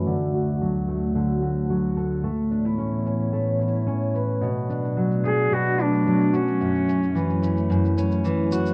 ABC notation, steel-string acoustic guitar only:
X:1
M:4/4
L:1/16
Q:1/4=110
K:A
V:1 name="Steel-string acoustic guitar"
D,2 F2 F,2 A,2 D,2 F2 F,2 A2 | A,2 D E C2 C2 A,2 E2 C2 B2 | B,,2 D2 F,2 A,2 B,,4 F,2 F2 | F,,2 C2 E,2 A,2 F,,2 C2 E,2 F2 |]